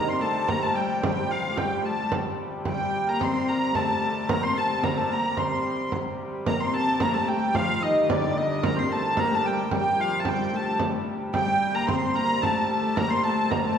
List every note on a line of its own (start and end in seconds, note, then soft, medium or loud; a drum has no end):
0.00 2.12 C3 medium
0.00 2.12 G3 medium
0.00 3.29 D#4 medium
0.00 1.28 F4 medium
0.00 0.73 G4 medium
0.00 0.26 A#4 medium
0.08 0.23 C4 medium
0.08 2.71 C5 medium
0.08 0.22 C6 loud
0.20 0.50 A3 medium
0.20 0.54 A4 medium
0.20 0.48 A5 loud
0.48 0.62 A#3 medium
0.48 0.66 A#4 medium
0.48 0.62 A#5 medium
0.48 frame drum loud
0.60 0.74 A3 medium
0.60 1.82 A4 medium
0.60 0.76 A5 medium
0.73 1.01 G3 medium
0.73 1.01 G4 medium
0.73 1.03 G5 medium
1.01 1.27 G3 medium
1.01 1.56 G4 medium
1.01 1.31 G5 medium
1.01 frame drum loud
1.28 1.51 F3 medium
1.28 4.65 F4 medium
1.28 1.58 F5 medium
1.50 1.58 A3 medium
1.56 1.84 G3 medium
1.56 2.65 G4 medium
1.56 1.85 G5 medium
1.56 frame drum medium
1.83 2.10 A3 medium
1.83 3.13 A4 medium
1.83 2.10 A5 medium
2.12 6.47 C3 medium
2.12 6.47 G3 medium
2.12 frame drum medium
2.65 3.04 G3 medium
2.65 5.79 G4 medium
2.65 3.09 G5 medium
2.65 frame drum medium
3.07 3.22 A#3 medium
3.07 3.48 A#4 medium
3.07 3.22 A#5 loud
3.20 3.75 C4 medium
3.20 4.42 C5 medium
3.20 3.48 C6 loud
3.20 frame drum medium
3.48 3.81 A#4 medium
3.48 3.75 A#5 medium
3.75 4.00 A3 medium
3.75 4.01 A4 medium
3.75 4.02 A5 medium
3.75 frame drum medium
4.01 4.31 A3 medium
4.01 4.34 A4 medium
4.01 4.30 A5 medium
4.29 4.45 A#3 medium
4.29 4.61 A#4 medium
4.29 4.43 A#5 loud
4.29 frame drum loud
4.43 4.56 C4 medium
4.43 5.36 C5 medium
4.43 4.57 C6 loud
4.55 4.78 A3 medium
4.55 4.88 A4 medium
4.55 4.84 A5 medium
4.78 4.85 C4 medium
4.82 4.97 A#3 medium
4.82 5.02 A#4 medium
4.82 4.97 A#5 medium
4.82 frame drum medium
4.96 5.10 A3 medium
4.96 5.15 A4 medium
4.96 5.12 A5 medium
5.09 5.23 A#3 medium
5.09 6.46 A#4 medium
5.09 5.39 A#5 medium
5.36 5.88 C4 medium
5.36 8.00 C5 medium
5.36 5.92 C6 medium
5.36 frame drum medium
5.92 frame drum medium
6.19 frame drum soft
6.46 10.79 C3 medium
6.46 10.80 G3 medium
6.46 6.59 A#3 medium
6.46 6.78 A#4 medium
6.46 6.61 A#5 loud
6.46 frame drum loud
6.60 7.02 C4 medium
6.60 6.74 C6 loud
6.72 7.07 A4 medium
6.72 7.01 A5 loud
7.00 7.16 A#3 loud
7.00 7.20 A#4 medium
7.00 7.14 A#5 medium
7.00 frame drum loud
7.14 7.54 A3 medium
7.14 8.68 A4 medium
7.14 7.28 A5 loud
7.28 9.44 G4 medium
7.28 7.55 G5 medium
7.55 7.84 F3 medium
7.55 9.99 F4 medium
7.55 7.83 F5 loud
7.55 frame drum loud
7.81 8.11 D#3 medium
7.81 8.14 D#4 medium
7.81 8.10 D#5 medium
8.09 8.65 D3 medium
8.09 11.82 D4 medium
8.09 8.37 D5 medium
8.09 frame drum loud
8.37 8.65 D#5 medium
8.62 8.76 A#3 medium
8.62 9.16 A#4 medium
8.62 8.79 A#5 loud
8.62 frame drum loud
8.76 8.88 C4 medium
8.76 11.40 C5 loud
8.76 8.92 C6 loud
8.89 9.19 A3 medium
8.89 9.19 A5 medium
9.17 9.33 A#3 medium
9.17 10.59 A#4 medium
9.17 9.34 A#5 medium
9.17 frame drum medium
9.31 9.47 A3 medium
9.31 9.46 A5 medium
9.44 9.69 G3 medium
9.44 9.71 G4 medium
9.44 9.74 G5 medium
9.70 9.96 G3 medium
9.70 10.26 G4 medium
9.70 frame drum loud
9.74 10.01 G5 medium
9.97 10.27 F3 medium
9.97 13.36 F4 medium
9.97 10.20 F5 medium
10.20 10.29 A5 medium
10.25 10.52 G3 medium
10.25 11.33 G4 medium
10.25 10.56 G5 medium
10.25 frame drum medium
10.53 10.78 A3 medium
10.53 11.81 A4 medium
10.53 10.80 A5 medium
10.53 frame drum soft
10.79 13.78 C3 medium
10.79 13.78 G3 medium
10.79 frame drum medium
11.34 11.77 G3 medium
11.34 13.78 G4 medium
11.34 11.75 G5 loud
11.34 frame drum medium
11.75 11.90 A#3 medium
11.75 12.14 A#4 medium
11.75 11.88 A#5 loud
11.87 12.18 C4 medium
11.87 13.08 C5 medium
11.87 12.16 C6 loud
11.87 frame drum loud
12.15 12.43 A#3 medium
12.15 12.48 A#4 medium
12.15 12.43 A#5 loud
12.42 12.69 A3 medium
12.42 12.70 A4 medium
12.42 12.70 A5 medium
12.42 frame drum medium
12.70 13.00 A3 medium
12.70 13.01 A4 medium
12.70 12.96 A5 loud
12.95 13.24 A#3 medium
12.95 13.28 A#4 medium
12.95 13.10 A#5 loud
12.95 frame drum medium
13.08 13.78 C5 medium
13.08 13.24 C6 loud
13.22 13.53 A3 medium
13.22 13.56 A4 medium
13.22 13.51 A5 loud
13.50 13.64 A#3 loud
13.50 13.70 A#4 medium
13.50 13.65 A#5 medium
13.50 frame drum loud
13.64 13.78 A3 medium
13.64 13.78 A4 medium
13.64 13.78 A5 medium